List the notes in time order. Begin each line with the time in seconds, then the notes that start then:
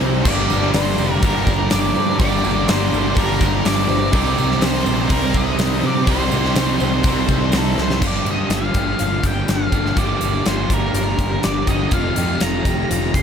Already playing: C3 G3 C4 D#4 G4 C5 A#5
0.01 C2 C5, tambourine
0.24 G1 G2 D3 G3 G4 A#4 D5 D6, kick, crash
0.28 A#3 D4
0.49 G1 G3 A#3 D4, tambourine
0.62 snare
0.72 G1 D3 G3 A#3 D4 C5 D5, snare, open hi-hat, tambourine
0.98 F1 D5, tambourine
1.21 G1 G2 D3 G3 A#3 D4 A#4, kick, open hi-hat, tambourine
1.47 G1 A4, kick, tambourine
1.70 G1 D3 G3 A#3 D4 A#4 D5, snare, open hi-hat, tambourine
1.96 G2 C5
2.19 G1 G2 D3 G3 A#3 D4 G4 A#4 D5, kick, open hi-hat, tambourine
2.44 G1 G3 A#3 D4, tambourine
2.68 G1 D3 G3 A#3 D4 C5 D5, snare, open hi-hat, tambourine
2.92 G1 D5, tambourine
3.15 G1 G2 D3 A#4, kick, open hi-hat, tambourine
3.20 G3 A#3 D4
3.41 G1 A4, kick, tambourine
3.64 G1 D3 G3 A#3 A#4 D5, snare, open hi-hat, tambourine
3.68 D4
3.89 G1 C5
4.13 C2 C3 G3 C4 D#4 G4 A#4 C5 D5 A#5, kick, open hi-hat, tambourine
4.38 C2 G3 C4 D#4, tambourine
4.51 snare
4.61 C2 C3 G3 C4 C5, snare, open hi-hat, tambourine
4.65 D#4 C5
4.86 A#1 C5, tambourine
5.09 C2 C3 G3 C4 A#4, kick, open hi-hat, tambourine
5.13 D#4
5.34 C2 A4 D#5, kick, tambourine
5.58 C2 C3 G3 C4 D#4 A#4, snare, open hi-hat, tambourine
5.83 C3 C5 D5
6.07 C2 C3 G3 C4 D#4 G4 A#4 C5 C6, kick, open hi-hat, tambourine
6.31 C2 G3 C4 D#4, tambourine
6.44 snare
6.55 C2 C3 G3 C4 D#4 C5, snare, open hi-hat, tambourine
6.80 C2 C5, tambourine
7.03 C2 C3 G3 A#4, kick, open hi-hat, tambourine
7.07 C4 D#4
7.29 C2 A4, kick, tambourine
7.52 C2 C3 G3 C4 A#4, snare, open hi-hat, tambourine
7.56 D#4 A4
7.78 C2 C5, snare
7.90 snare
8.02 G1 G2 D3 G3 A#3 D4 F4 G4, kick, crash
8.07 D5
8.25 G2 G4, closed hi-hat
8.31 D#5
8.50 G1 F4, snare, closed hi-hat
8.55 F5
8.74 G1 D3 G3 A#3 D4 G4, kick, closed hi-hat
8.78 G2
8.99 G1 F4, closed hi-hat
9.03 F5
9.23 G1 G4 G5, kick, closed hi-hat
9.48 G1 F5, snare, closed hi-hat
9.72 G1 G2 D3 G3 A#3 D4 G4 A4, kick, closed hi-hat
9.86 snare
9.96 G1 G2 D3 G3 A#3 D4 F4 G4 D5, kick, closed hi-hat
10.21 G1 G4, closed hi-hat
10.46 G1 F4 C5, snare, closed hi-hat
10.69 G1 G2 D3 G3 A#3 D4 G4, kick, closed hi-hat
10.73 A#4
10.94 G1 F4, closed hi-hat
11.19 G1 G4, kick, closed hi-hat
11.43 G1 D5, snare, closed hi-hat
11.67 G1 G2 D3 G3 A#3 D4 G4 A4 D#5, kick, closed hi-hat
11.91 F1 F2 C3 D#3 A3 D#4 F4 F5, kick, closed hi-hat
12.16 F2 G4, closed hi-hat
12.40 F1 F4 A#5, snare, closed hi-hat
12.65 F1 F2 C3 D#3 A3 D#4 G4, kick, closed hi-hat
12.90 F1 F4 A#5, closed hi-hat
13.14 F1 G4 C6, kick, closed hi-hat